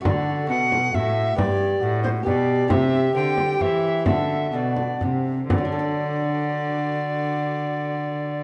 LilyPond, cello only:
\new Staff \with { instrumentName = "Cello" } { \clef bass \time 3/4 \key d \mixolydian \tempo 4 = 128 d4 b,4 a,4 | g,4 a,4 b,4 | c4 d4 e4 | d4 b,4 c4 |
d2.~ | d2. | }